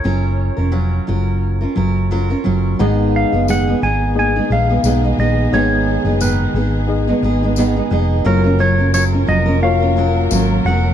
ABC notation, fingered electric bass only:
X:1
M:4/4
L:1/16
Q:"Swing 16ths" 1/4=88
K:F#
V:1 name="Fingered electric bass" clef=bass
F,,,3 E,,,3 F,,,4 F,,,4 F,,,2 | G,,,3 F,,,3 G,,,4 A,,,2 B,,,2 A,,,2 | G,,,3 F,,,3 G,,,4 G,,,4 E,,,2 | F,,,6 E,,,6 G,,,2 E,,,2 |]